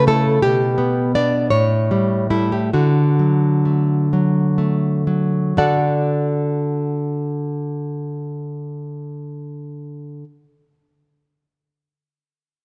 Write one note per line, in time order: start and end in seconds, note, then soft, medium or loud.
0.00 0.38 C#3 loud
0.07 0.38 A3 medium
0.07 0.39 E4 medium
0.07 0.40 A4 loud
0.42 1.48 B2 loud
0.42 1.11 G4 loud
0.78 1.14 B3 medium
1.15 1.48 B3 medium
1.15 1.48 D4 medium
1.15 1.50 D5 loud
1.50 2.70 A2 medium
1.50 2.27 C#5 loud
1.91 2.29 G3 medium
2.30 2.69 G3 medium
2.30 2.69 A3 medium
2.30 2.51 E4 medium
2.52 2.73 G4 medium
2.73 5.53 D3 medium
2.73 4.07 F#4 medium
3.19 4.12 F#3 medium
3.65 4.57 A3 medium
4.13 5.06 F#3 medium
4.58 5.57 A3 soft
5.07 5.56 F#3 medium
5.57 10.23 D3 medium
5.57 10.24 F#4 medium
5.57 10.24 A4 medium
5.57 10.24 D5 medium
5.57 10.24 F#5 medium